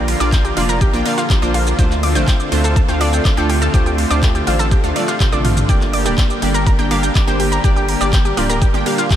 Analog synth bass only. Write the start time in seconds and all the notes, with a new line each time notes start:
Already playing: A#1
0.20 A#1
0.57 F1
0.93 A#1
1.42 A#1
1.79 D2
2.15 A1
2.52 D2
2.88 D2
3.37 D2
3.74 D2
4.10 D2
4.47 A1
4.84 D2
5.32 A1
5.69 G1
6.06 D1
6.42 G1
6.79 G1
7.28 G1
7.64 G1
8.01 G1
8.37 D1
8.74 G1